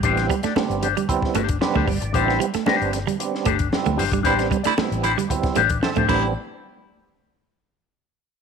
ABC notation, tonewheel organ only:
X:1
M:4/4
L:1/8
Q:1/4=114
K:Am
V:1 name="Tonewheel organ"
[G,B,CE] z [G,B,CD] z [G,B,CE] z [G,B,CDB] d | [G,B,CE] z [G,B,CD] z [G,B,CD] z [G,B,CE] z | [G,B,CD] z [G,B,CE] z [G,B,CE] z [CAe] [G,B,CD] | z8 |]